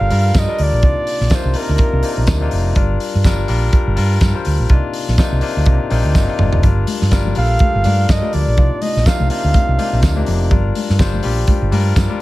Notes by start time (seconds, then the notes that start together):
Already playing: G3 D4 F4 A4 A#4 F5
0.01 G1
0.10 G2 G3 D4 F4 A#4, open hi-hat
0.34 G2 D#5, kick, snare, closed hi-hat, tambourine
0.48 G3 D4 F4 A#4
0.58 D2, open hi-hat
0.63 D5
0.73 A#1
0.82 C2 C3 A#3 D4 D#4 F4, kick, closed hi-hat
1.07 open hi-hat
1.21 A#1, snare
1.30 C3 A#3 D4 D#4 F4, kick, snare, closed hi-hat, tambourine
1.34 C5
1.45 C2
1.54 C3 A#3 D4 D#4 F4, open hi-hat
1.58 A#4
1.69 D2
1.78 kick, closed hi-hat
1.93 C2
2.03 C3 A#3 D4 D#4 F4, open hi-hat
2.17 A#1
2.27 D2, kick, snare, closed hi-hat, tambourine
2.41 C3 A#3 D4 D#4 F4
2.51 F1, open hi-hat
2.75 G1 G3 D4 F4 A#4, kick, closed hi-hat
3.00 open hi-hat
3.15 G2
3.24 G1 G3 D4 F4 A#4, kick, snare, closed hi-hat, tambourine
3.48 A#1 G3 D4 F4 A#4, open hi-hat
3.73 kick, closed hi-hat
3.87 G1
3.96 G2 G3 D4 F4 A#4, open hi-hat
4.21 G2, kick, snare, closed hi-hat, tambourine
4.34 G3 D4 F4 C5
4.45 D2, open hi-hat
4.60 A#1
4.69 C2 C3 A#3 D4 D#4 F4, kick, closed hi-hat
4.94 open hi-hat
5.08 A#1, snare
5.18 C3 A#3 D4 D#4 F4, kick, snare, closed hi-hat, tambourine
5.32 C2
5.41 C3 A#3 D4 D#4 F4, open hi-hat
5.57 D2
5.66 C2, kick, closed hi-hat
5.90 A#1 C3 A#3 D4 D#4 F4 G5, open hi-hat
6.05 D2
6.15 G1 D#5, kick, snare, tambourine
6.28 C3 A#3 D4 D#4 F4
6.39 G1 D5, mid tom
6.53 F1, floor tom
6.63 G1 G3 D4 F4 A#4, kick, closed hi-hat, low conga
6.87 open hi-hat, high conga
7.02 G2, snare
7.11 G1 G3 D4 F4 A#4, kick, snare, closed hi-hat, tambourine
7.25 high conga, low conga
7.35 A#1 G3 D4 F4 G4 F5, open hi-hat, muted conga
7.43 A4
7.59 kick, closed hi-hat, muted conga, high conga
7.75 G1
7.84 G2 G3 D4 F4 A#4, open hi-hat, muted conga, high conga
8.09 G2 D#5, kick, snare, closed hi-hat, tambourine
8.21 G3 D4 F4 A#4, high conga
8.33 D2 D5, open hi-hat, low conga
8.48 A#1
8.57 C2 C3 A#3 D4 D#4 F4, kick, closed hi-hat, muted conga, low conga
8.82 D#5, open hi-hat, muted conga, high conga
8.96 A#1, snare
9.06 C3 A#3 D4 D#4 F4 F5, kick, snare, closed hi-hat, tambourine
9.19 C2, high conga, low conga
9.30 C3 A#3 D4 D#4 F4 F5, open hi-hat
9.44 D2
9.54 kick, closed hi-hat, muted conga, high conga
9.69 C2
9.78 C3 A#3 D4 D#4 F4, open hi-hat, high conga
9.93 A#1
10.03 D2, kick, snare, closed hi-hat, tambourine
10.16 C3 A#3 D4 D#4 G4, high conga
10.26 F1, open hi-hat, muted conga, low conga
10.50 G1 G3 D4 F4 A#4, kick, closed hi-hat, low conga
10.75 open hi-hat, muted conga, high conga
10.90 G2, snare
10.99 G1 G3 D4 F4 C5, kick, snare, closed hi-hat, tambourine
11.14 high conga, low conga
11.23 A#1 G3 D4 F4 G4, open hi-hat
11.47 kick, closed hi-hat, high conga
11.62 G1
11.72 G2 G3 D4 F4 A#4, open hi-hat, high conga
11.96 G2, kick, snare, closed hi-hat, tambourine, muted conga
12.09 G3 D4 F4 A#4, high conga